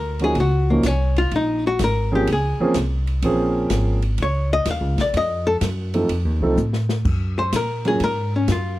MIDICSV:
0, 0, Header, 1, 6, 480
1, 0, Start_track
1, 0, Key_signature, -5, "minor"
1, 0, Tempo, 477327
1, 1326, Time_signature, 4, 2, 24, 8
1, 8842, End_track
2, 0, Start_track
2, 0, Title_t, "Hollow-body jazz guitar"
2, 0, Program_c, 0, 26
2, 0, Note_on_c, 0, 70, 80
2, 214, Note_off_c, 0, 70, 0
2, 239, Note_on_c, 0, 68, 86
2, 375, Note_off_c, 0, 68, 0
2, 404, Note_on_c, 0, 66, 78
2, 701, Note_off_c, 0, 66, 0
2, 707, Note_on_c, 0, 58, 43
2, 867, Note_off_c, 0, 58, 0
2, 867, Note_on_c, 0, 61, 60
2, 1172, Note_off_c, 0, 61, 0
2, 1188, Note_on_c, 0, 65, 88
2, 1330, Note_off_c, 0, 65, 0
2, 1363, Note_on_c, 0, 63, 76
2, 1661, Note_off_c, 0, 63, 0
2, 1680, Note_on_c, 0, 66, 85
2, 1817, Note_off_c, 0, 66, 0
2, 1848, Note_on_c, 0, 70, 97
2, 2144, Note_off_c, 0, 70, 0
2, 2165, Note_on_c, 0, 67, 74
2, 2300, Note_off_c, 0, 67, 0
2, 2338, Note_on_c, 0, 68, 79
2, 2762, Note_off_c, 0, 68, 0
2, 4248, Note_on_c, 0, 73, 83
2, 4545, Note_off_c, 0, 73, 0
2, 4555, Note_on_c, 0, 75, 96
2, 4695, Note_off_c, 0, 75, 0
2, 4732, Note_on_c, 0, 77, 76
2, 5026, Note_off_c, 0, 77, 0
2, 5038, Note_on_c, 0, 74, 80
2, 5177, Note_off_c, 0, 74, 0
2, 5199, Note_on_c, 0, 75, 97
2, 5498, Note_on_c, 0, 69, 94
2, 5500, Note_off_c, 0, 75, 0
2, 5589, Note_off_c, 0, 69, 0
2, 7429, Note_on_c, 0, 72, 86
2, 7571, Note_off_c, 0, 72, 0
2, 7601, Note_on_c, 0, 70, 89
2, 7900, Note_off_c, 0, 70, 0
2, 7921, Note_on_c, 0, 68, 83
2, 8057, Note_off_c, 0, 68, 0
2, 8081, Note_on_c, 0, 70, 95
2, 8379, Note_off_c, 0, 70, 0
2, 8405, Note_on_c, 0, 61, 44
2, 8539, Note_off_c, 0, 61, 0
2, 8567, Note_on_c, 0, 65, 60
2, 8842, Note_off_c, 0, 65, 0
2, 8842, End_track
3, 0, Start_track
3, 0, Title_t, "Grand piano"
3, 0, Program_c, 1, 0
3, 206, Note_on_c, 1, 53, 56
3, 214, Note_on_c, 1, 58, 55
3, 218, Note_on_c, 1, 61, 54
3, 218, Note_on_c, 1, 66, 67
3, 219, Note_on_c, 1, 63, 50
3, 347, Note_off_c, 1, 53, 0
3, 351, Note_off_c, 1, 58, 0
3, 353, Note_off_c, 1, 61, 0
3, 353, Note_off_c, 1, 66, 0
3, 354, Note_off_c, 1, 63, 0
3, 707, Note_on_c, 1, 53, 62
3, 708, Note_on_c, 1, 58, 54
3, 708, Note_on_c, 1, 61, 54
3, 712, Note_on_c, 1, 63, 54
3, 719, Note_on_c, 1, 66, 64
3, 838, Note_off_c, 1, 53, 0
3, 839, Note_off_c, 1, 58, 0
3, 839, Note_off_c, 1, 61, 0
3, 841, Note_off_c, 1, 63, 0
3, 844, Note_off_c, 1, 66, 0
3, 2128, Note_on_c, 1, 58, 64
3, 2130, Note_on_c, 1, 60, 60
3, 2132, Note_on_c, 1, 53, 65
3, 2136, Note_on_c, 1, 68, 78
3, 2137, Note_on_c, 1, 61, 64
3, 2270, Note_off_c, 1, 58, 0
3, 2271, Note_off_c, 1, 60, 0
3, 2272, Note_off_c, 1, 53, 0
3, 2274, Note_off_c, 1, 68, 0
3, 2275, Note_off_c, 1, 61, 0
3, 2618, Note_on_c, 1, 53, 83
3, 2619, Note_on_c, 1, 58, 69
3, 2623, Note_on_c, 1, 60, 76
3, 2624, Note_on_c, 1, 68, 88
3, 2625, Note_on_c, 1, 61, 73
3, 2755, Note_off_c, 1, 53, 0
3, 2756, Note_off_c, 1, 58, 0
3, 2758, Note_off_c, 1, 60, 0
3, 2758, Note_off_c, 1, 68, 0
3, 2759, Note_off_c, 1, 61, 0
3, 3257, Note_on_c, 1, 53, 71
3, 3259, Note_on_c, 1, 58, 61
3, 3259, Note_on_c, 1, 60, 66
3, 3264, Note_on_c, 1, 61, 63
3, 3268, Note_on_c, 1, 68, 85
3, 3993, Note_off_c, 1, 53, 0
3, 3994, Note_off_c, 1, 58, 0
3, 3994, Note_off_c, 1, 60, 0
3, 3997, Note_off_c, 1, 61, 0
3, 3999, Note_off_c, 1, 68, 0
3, 5975, Note_on_c, 1, 53, 64
3, 5975, Note_on_c, 1, 57, 54
3, 5975, Note_on_c, 1, 60, 51
3, 5980, Note_on_c, 1, 63, 48
3, 5988, Note_on_c, 1, 69, 65
3, 6114, Note_off_c, 1, 53, 0
3, 6114, Note_off_c, 1, 57, 0
3, 6114, Note_off_c, 1, 60, 0
3, 6116, Note_off_c, 1, 63, 0
3, 6120, Note_off_c, 1, 69, 0
3, 6456, Note_on_c, 1, 53, 68
3, 6462, Note_on_c, 1, 57, 60
3, 6465, Note_on_c, 1, 63, 58
3, 6466, Note_on_c, 1, 60, 58
3, 6470, Note_on_c, 1, 69, 77
3, 6594, Note_off_c, 1, 53, 0
3, 6597, Note_off_c, 1, 57, 0
3, 6599, Note_off_c, 1, 60, 0
3, 6599, Note_off_c, 1, 63, 0
3, 6601, Note_off_c, 1, 69, 0
3, 7895, Note_on_c, 1, 54, 56
3, 7901, Note_on_c, 1, 58, 53
3, 7902, Note_on_c, 1, 61, 56
3, 7906, Note_on_c, 1, 65, 54
3, 7908, Note_on_c, 1, 70, 65
3, 8033, Note_off_c, 1, 54, 0
3, 8036, Note_off_c, 1, 58, 0
3, 8036, Note_off_c, 1, 61, 0
3, 8038, Note_off_c, 1, 65, 0
3, 8039, Note_off_c, 1, 70, 0
3, 8842, End_track
4, 0, Start_track
4, 0, Title_t, "Upright bass"
4, 0, Program_c, 2, 32
4, 0, Note_on_c, 2, 38, 80
4, 345, Note_off_c, 2, 38, 0
4, 361, Note_on_c, 2, 37, 85
4, 829, Note_off_c, 2, 37, 0
4, 845, Note_on_c, 2, 36, 77
4, 1312, Note_off_c, 2, 36, 0
4, 1322, Note_on_c, 2, 34, 81
4, 1790, Note_off_c, 2, 34, 0
4, 1805, Note_on_c, 2, 32, 86
4, 2272, Note_off_c, 2, 32, 0
4, 2286, Note_on_c, 2, 37, 79
4, 2589, Note_off_c, 2, 37, 0
4, 2764, Note_on_c, 2, 36, 75
4, 3232, Note_off_c, 2, 36, 0
4, 3243, Note_on_c, 2, 34, 88
4, 3711, Note_off_c, 2, 34, 0
4, 3722, Note_on_c, 2, 32, 78
4, 4191, Note_off_c, 2, 32, 0
4, 4205, Note_on_c, 2, 37, 78
4, 4673, Note_off_c, 2, 37, 0
4, 4680, Note_on_c, 2, 39, 79
4, 4831, Note_off_c, 2, 39, 0
4, 4831, Note_on_c, 2, 37, 60
4, 4984, Note_off_c, 2, 37, 0
4, 4990, Note_on_c, 2, 34, 63
4, 5148, Note_off_c, 2, 34, 0
4, 5163, Note_on_c, 2, 41, 86
4, 5632, Note_off_c, 2, 41, 0
4, 5641, Note_on_c, 2, 42, 88
4, 6110, Note_off_c, 2, 42, 0
4, 6125, Note_on_c, 2, 41, 78
4, 6281, Note_off_c, 2, 41, 0
4, 6281, Note_on_c, 2, 39, 56
4, 6437, Note_off_c, 2, 39, 0
4, 6443, Note_on_c, 2, 36, 62
4, 6590, Note_off_c, 2, 36, 0
4, 6596, Note_on_c, 2, 45, 86
4, 7067, Note_off_c, 2, 45, 0
4, 7087, Note_on_c, 2, 42, 80
4, 7552, Note_off_c, 2, 42, 0
4, 7568, Note_on_c, 2, 46, 85
4, 8032, Note_off_c, 2, 46, 0
4, 8047, Note_on_c, 2, 44, 75
4, 8511, Note_off_c, 2, 44, 0
4, 8526, Note_on_c, 2, 42, 90
4, 8828, Note_off_c, 2, 42, 0
4, 8842, End_track
5, 0, Start_track
5, 0, Title_t, "Muted upright bass strokes"
5, 2609, Note_on_c, 9, 29, 37
5, 2710, Note_off_c, 9, 29, 0
5, 8842, End_track
6, 0, Start_track
6, 0, Title_t, "Drums"
6, 194, Note_on_c, 9, 51, 47
6, 295, Note_off_c, 9, 51, 0
6, 352, Note_on_c, 9, 51, 56
6, 359, Note_on_c, 9, 36, 24
6, 453, Note_off_c, 9, 51, 0
6, 460, Note_off_c, 9, 36, 0
6, 837, Note_on_c, 9, 44, 52
6, 837, Note_on_c, 9, 51, 72
6, 842, Note_on_c, 9, 38, 57
6, 843, Note_on_c, 9, 36, 17
6, 938, Note_off_c, 9, 44, 0
6, 938, Note_off_c, 9, 51, 0
6, 943, Note_off_c, 9, 36, 0
6, 943, Note_off_c, 9, 38, 0
6, 1169, Note_on_c, 9, 51, 46
6, 1270, Note_off_c, 9, 51, 0
6, 1321, Note_on_c, 9, 51, 61
6, 1324, Note_on_c, 9, 36, 24
6, 1422, Note_off_c, 9, 51, 0
6, 1424, Note_off_c, 9, 36, 0
6, 1801, Note_on_c, 9, 44, 52
6, 1801, Note_on_c, 9, 51, 75
6, 1805, Note_on_c, 9, 36, 22
6, 1806, Note_on_c, 9, 38, 76
6, 1902, Note_off_c, 9, 44, 0
6, 1902, Note_off_c, 9, 51, 0
6, 1906, Note_off_c, 9, 36, 0
6, 1907, Note_off_c, 9, 38, 0
6, 2286, Note_on_c, 9, 51, 68
6, 2287, Note_on_c, 9, 36, 20
6, 2387, Note_off_c, 9, 36, 0
6, 2387, Note_off_c, 9, 51, 0
6, 2757, Note_on_c, 9, 44, 55
6, 2757, Note_on_c, 9, 51, 66
6, 2762, Note_on_c, 9, 38, 70
6, 2766, Note_on_c, 9, 36, 27
6, 2857, Note_off_c, 9, 44, 0
6, 2857, Note_off_c, 9, 51, 0
6, 2862, Note_off_c, 9, 38, 0
6, 2867, Note_off_c, 9, 36, 0
6, 3089, Note_on_c, 9, 51, 44
6, 3190, Note_off_c, 9, 51, 0
6, 3242, Note_on_c, 9, 51, 65
6, 3246, Note_on_c, 9, 36, 16
6, 3342, Note_off_c, 9, 51, 0
6, 3347, Note_off_c, 9, 36, 0
6, 3718, Note_on_c, 9, 44, 56
6, 3718, Note_on_c, 9, 51, 73
6, 3723, Note_on_c, 9, 38, 80
6, 3726, Note_on_c, 9, 36, 19
6, 3819, Note_off_c, 9, 44, 0
6, 3819, Note_off_c, 9, 51, 0
6, 3824, Note_off_c, 9, 38, 0
6, 3827, Note_off_c, 9, 36, 0
6, 4046, Note_on_c, 9, 51, 53
6, 4146, Note_off_c, 9, 51, 0
6, 4201, Note_on_c, 9, 51, 64
6, 4207, Note_on_c, 9, 36, 24
6, 4301, Note_off_c, 9, 51, 0
6, 4308, Note_off_c, 9, 36, 0
6, 4681, Note_on_c, 9, 44, 55
6, 4681, Note_on_c, 9, 51, 72
6, 4686, Note_on_c, 9, 36, 20
6, 4686, Note_on_c, 9, 38, 66
6, 4781, Note_off_c, 9, 44, 0
6, 4781, Note_off_c, 9, 51, 0
6, 4786, Note_off_c, 9, 38, 0
6, 4787, Note_off_c, 9, 36, 0
6, 5006, Note_on_c, 9, 51, 48
6, 5011, Note_on_c, 9, 38, 63
6, 5107, Note_off_c, 9, 51, 0
6, 5112, Note_off_c, 9, 38, 0
6, 5165, Note_on_c, 9, 51, 67
6, 5166, Note_on_c, 9, 36, 27
6, 5266, Note_off_c, 9, 51, 0
6, 5267, Note_off_c, 9, 36, 0
6, 5642, Note_on_c, 9, 44, 65
6, 5642, Note_on_c, 9, 51, 73
6, 5644, Note_on_c, 9, 36, 24
6, 5647, Note_on_c, 9, 38, 73
6, 5742, Note_off_c, 9, 44, 0
6, 5742, Note_off_c, 9, 51, 0
6, 5745, Note_off_c, 9, 36, 0
6, 5747, Note_off_c, 9, 38, 0
6, 5969, Note_on_c, 9, 51, 54
6, 6070, Note_off_c, 9, 51, 0
6, 6125, Note_on_c, 9, 51, 64
6, 6126, Note_on_c, 9, 36, 24
6, 6226, Note_off_c, 9, 51, 0
6, 6227, Note_off_c, 9, 36, 0
6, 6607, Note_on_c, 9, 44, 47
6, 6612, Note_on_c, 9, 48, 47
6, 6708, Note_off_c, 9, 44, 0
6, 6713, Note_off_c, 9, 48, 0
6, 6769, Note_on_c, 9, 38, 61
6, 6869, Note_off_c, 9, 38, 0
6, 6931, Note_on_c, 9, 38, 75
6, 7031, Note_off_c, 9, 38, 0
6, 7090, Note_on_c, 9, 36, 72
6, 7092, Note_on_c, 9, 49, 85
6, 7190, Note_off_c, 9, 36, 0
6, 7192, Note_off_c, 9, 49, 0
6, 7566, Note_on_c, 9, 44, 69
6, 7566, Note_on_c, 9, 51, 76
6, 7569, Note_on_c, 9, 36, 22
6, 7571, Note_on_c, 9, 38, 67
6, 7667, Note_off_c, 9, 44, 0
6, 7667, Note_off_c, 9, 51, 0
6, 7669, Note_off_c, 9, 36, 0
6, 7672, Note_off_c, 9, 38, 0
6, 7892, Note_on_c, 9, 51, 51
6, 7993, Note_off_c, 9, 51, 0
6, 8044, Note_on_c, 9, 51, 71
6, 8047, Note_on_c, 9, 36, 22
6, 8144, Note_off_c, 9, 51, 0
6, 8148, Note_off_c, 9, 36, 0
6, 8526, Note_on_c, 9, 44, 59
6, 8526, Note_on_c, 9, 51, 73
6, 8527, Note_on_c, 9, 36, 24
6, 8531, Note_on_c, 9, 38, 75
6, 8626, Note_off_c, 9, 44, 0
6, 8626, Note_off_c, 9, 51, 0
6, 8627, Note_off_c, 9, 36, 0
6, 8631, Note_off_c, 9, 38, 0
6, 8842, End_track
0, 0, End_of_file